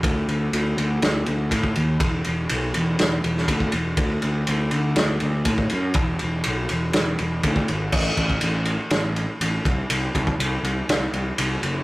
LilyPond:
<<
  \new Staff \with { instrumentName = "Picked electric bass" } { \clef bass \time 4/4 \key e \mixolydian \tempo 4 = 122 d,8 d,8 d,8 d,8 d,8 d,8 a,8 dis,8 | e,,8 e,,8 b,,8 e,,8 e,,8 e,,8 d,8 e,,8 | d,8 d,8 d,8 d,8 d,8 d,8 a,8 fis,8 | e,,8 e,,8 b,,8 e,,8 e,,8 e,,8 d,8 gis,,8 |
a,,8 a,,8 a,,4 a,,4 a,,8 c,8 | c,8 c,8 c,8 c,8 c,8 c,8 c,8 fis,,8 | }
  \new DrumStaff \with { instrumentName = "Drums" } \drummode { \time 4/4 <bd cymr>8 cymr8 cymr8 cymr8 <cymr sn>8 cymr8 <bd cymr>16 bd16 cymr8 | <bd cymr>8 cymr8 cymr8 cymr8 <cymr sn>8 cymr16 sn16 <bd cymr>16 bd16 cymr8 | <bd cymr>8 cymr8 cymr8 cymr8 <cymr sn>8 cymr8 <bd cymr>16 bd16 cymr8 | <bd cymr>8 cymr8 cymr8 cymr8 <cymr sn>8 cymr8 <bd cymr>16 bd16 cymr8 |
<cymc bd>8 <bd cymr>16 bd16 cymr8 cymr8 <cymr sn>8 cymr8 cymr8 <bd cymr>8 | cymr8 <bd cymr>16 bd16 cymr8 cymr8 <cymr sn>8 cymr8 cymr8 cymr8 | }
>>